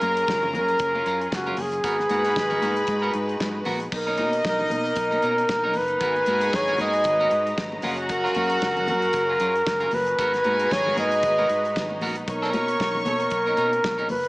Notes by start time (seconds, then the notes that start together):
Already playing: F#3 C#4 F4 G#4 A#4 A#5
0.01 F#2 C#4 F4 A#4, closed hi-hat, high conga
0.17 muted clean electric guitar stroke, closed hi-hat
0.28 F#1, muted clean electric guitar stroke, kick, snare, muted conga
0.43 muted clean electric guitar stroke, muted conga, low conga
0.53 F#2 A#4, closed hi-hat, high conga, low conga
0.68 muted clean electric guitar stroke, closed hi-hat
0.79 F#1, muted clean electric guitar stroke, kick, closed hi-hat
0.95 C#4 F4 A#4, muted conga
1.06 F#2 C#4 F4 A#4, closed hi-hat
1.21 muted clean electric guitar stroke, closed hi-hat
1.32 F#1 F#4, muted clean electric guitar stroke, kick, snare, muted conga
1.47 C#4 F4 A#4, closed hi-hat, muted conga
1.57 F#1, muted clean electric guitar stroke, open hi-hat, high conga, low conga
1.61 G#4
1.72 muted clean electric guitar stroke, closed hi-hat
1.83 G#1 G#3 B3 D#4 F#4 A#4 B4 B5, kick, closed hi-hat, muted conga
1.98 muted clean electric guitar stroke, snare, muted conga
2.09 G#2 B3 F#4 A#4, closed hi-hat, high conga
2.24 B3 F#4 A#4, closed hi-hat
2.36 G#1, muted clean electric guitar stroke, kick, snare, muted conga
2.50 B3 F#4 A#4, closed hi-hat, muted conga, low conga
2.61 G#2 B3 F#4 A#4, closed hi-hat, high conga
2.76 muted clean electric guitar stroke, closed hi-hat
2.87 G#2, muted clean electric guitar stroke, kick, closed hi-hat
3.02 B3 F#4 A#4, closed hi-hat
3.13 G#2, muted clean electric guitar stroke, closed hi-hat
3.28 muted clean electric guitar stroke, closed hi-hat
3.40 G#2, muted clean electric guitar stroke, kick, snare, muted conga
3.54 muted clean electric guitar stroke
3.65 A#1 B3 F#4 A#4, open hi-hat, high conga, low conga
3.80 muted clean electric guitar stroke, closed hi-hat
3.92 B1 A#3 B3 D#4 A#4 D#5, muted clean electric guitar stroke, kick, crash
4.07 C#4 D#4 A#4, closed hi-hat, muted conga
4.18 B2 C#4 D#4 A#4, closed hi-hat, high conga
4.32 muted clean electric guitar stroke, closed hi-hat
4.44 B1 A#4, muted clean electric guitar stroke, kick, snare, muted conga
4.59 muted clean electric guitar stroke, low conga
4.70 B2, closed hi-hat, high conga, low conga
4.74 A#4
4.85 muted clean electric guitar stroke, closed hi-hat
4.96 B1, muted clean electric guitar stroke, kick, closed hi-hat, muted conga
5.11 C#4 D#4 A#4, closed hi-hat, muted conga
5.22 B2 C#4 D#4 A#4, closed hi-hat
5.38 muted clean electric guitar stroke, closed hi-hat
5.49 B1, kick, snare, muted conga
5.64 C#4 D#4 A#4, muted conga
5.73 F#1 B4, muted clean electric guitar stroke, open hi-hat, high conga, low conga
5.88 muted clean electric guitar stroke, closed hi-hat
6.00 G#1 G#3 B3 F#4 G#4 A#4 B4 G#5 A#5, kick, closed hi-hat
6.16 muted clean electric guitar stroke, closed hi-hat, muted conga
6.26 G#2 B3 F#4 A#4, closed hi-hat, high conga
6.41 B3 F#4 A#4, closed hi-hat
6.53 G#1 C#5, kick, snare
6.68 B3 F#4 A#4, closed hi-hat, muted conga, low conga
6.78 G#2 B3 F#4 A#4 D#5, closed hi-hat, high conga, low conga
6.93 muted clean electric guitar stroke, closed hi-hat
7.04 G#1, muted clean electric guitar stroke, kick, closed hi-hat, muted conga
7.20 B3 F#4 A#4, closed hi-hat, muted conga
7.31 G#2, muted clean electric guitar stroke, closed hi-hat
7.46 muted clean electric guitar stroke, closed hi-hat
7.58 G#1, muted clean electric guitar stroke, kick, snare, muted conga
7.72 muted clean electric guitar stroke, muted conga
7.82 F#1 F#3 C#4 F4 F#4 G#4 A#4 F#5, open hi-hat, high conga, low conga
7.97 muted clean electric guitar stroke, closed hi-hat
8.09 A#4, muted clean electric guitar stroke, kick, closed hi-hat, muted conga
8.24 C#4 F4 A#4, snare, muted conga
8.35 F#2 C#4 F4 A#4, closed hi-hat, high conga
8.50 muted clean electric guitar stroke, closed hi-hat
8.62 F#1, muted clean electric guitar stroke, kick, snare, muted conga
8.77 muted clean electric guitar stroke, closed hi-hat, low conga
8.87 F#2 A#4, closed hi-hat, high conga, low conga
9.02 muted clean electric guitar stroke, closed hi-hat
9.13 F#1, muted clean electric guitar stroke, kick, closed hi-hat, muted conga
9.29 C#4 F4 A#4
9.40 F#2 C#4 F4 A#4, closed hi-hat
9.55 muted clean electric guitar stroke, closed hi-hat
9.66 F#1, muted clean electric guitar stroke, kick, snare
9.80 C#4 F4 A#4, closed hi-hat
9.91 F#1 B4, muted clean electric guitar stroke, open hi-hat, high conga, low conga
10.06 muted clean electric guitar stroke, closed hi-hat
10.18 G#1 G#3 B3 D#4 F#4 G#4 A#4 B4 G#5 A#5, kick, closed hi-hat
10.33 muted clean electric guitar stroke, snare, closed hi-hat
10.44 G#2 B3 F#4 A#4, closed hi-hat, high conga
10.59 B3 F#4 A#4, closed hi-hat
10.71 G#1 C#5, muted clean electric guitar stroke, kick, snare, muted conga
10.85 B3 F#4 A#4, low conga
10.97 G#2 B3 F#4 A#4 D#5, closed hi-hat, high conga, low conga
11.12 muted clean electric guitar stroke, closed hi-hat
11.23 G#1, muted clean electric guitar stroke, kick, closed hi-hat
11.38 B3 F#4 A#4, closed hi-hat, muted conga
11.49 G#2, closed hi-hat
11.64 muted clean electric guitar stroke, closed hi-hat
11.76 G#1, muted clean electric guitar stroke, kick, snare
11.89 muted clean electric guitar stroke, muted conga
12.01 A#1 B3 F#4 A#4, open hi-hat, high conga, low conga
12.16 muted clean electric guitar stroke, closed hi-hat
12.27 B1 A#3 B3 A#4 C#5 C#6, muted clean electric guitar stroke, kick, closed hi-hat, muted conga
12.42 C#4 D#4 A#4, snare, closed hi-hat
12.53 B2 C#4 D#4 A#4, closed hi-hat, high conga
12.68 muted clean electric guitar stroke, closed hi-hat
12.80 B1, muted clean electric guitar stroke, kick, snare, muted conga
12.94 muted clean electric guitar stroke, low conga
13.05 B2 A#4, closed hi-hat, high conga, low conga
13.20 muted clean electric guitar stroke, closed hi-hat
13.30 B1, muted clean electric guitar stroke, kick, closed hi-hat, muted conga
13.46 C#4 D#4 A#4, closed hi-hat
13.57 B2 C#4 D#4 A#4, closed hi-hat
13.72 muted clean electric guitar stroke, closed hi-hat
13.83 B1, muted clean electric guitar stroke, kick, snare, muted conga
13.98 C#4 D#4 A#4, closed hi-hat, muted conga
14.09 F#1 B4, muted clean electric guitar stroke, open hi-hat, high conga, low conga
14.23 muted clean electric guitar stroke, closed hi-hat